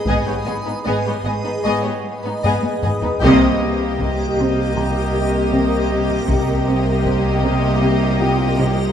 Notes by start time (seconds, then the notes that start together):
0.05 G#1 G#2 B3 G#4 B4 D#5, taiko
0.26 G#2 B3 G4 C#5
0.45 G#1 G#2 B3 G#4 D#5 B5
0.65 G#2 B3 D#4 B4
0.84 G#1 G#2 B3 G#4 D#5
1.05 G#2 B3 G4 C#5
1.25 G#1 G#2 B3 G#4 D#5
1.44 G#2 B3 D#4 B4
1.64 G#1 G#2 B3 G#4 D#5 C#6
1.84 G#2 B3 G4 C#5
2.04 G#3
2.24 G#2 B3 D#4 B4
2.43 G#1 G#2 G#3 B3 G#4 D#5, taiko low-mid
2.63 taiko high
2.83 G#1 G#2 B3 G#4 D#5, taiko low-mid
3.01 G#2 B3 D#4 B4, taiko low
3.20 C2 C3 G4 A#4 D#5 D#6, taiko
3.24 A#3 G4 D#5
3.61 C4
3.99 C4, taiko
4.38 C3
4.76 C3 A#5, taiko mid
5.15 C3
5.53 C3, taiko mid
5.92 C3
6.10 taiko mid
6.28 C2 C3 A#3 G4 A#4 D#5, taiko
6.68 C4
7.06 C4, taiko
7.45 C3
7.82 C3
8.19 C3 F4 G5
8.58 C3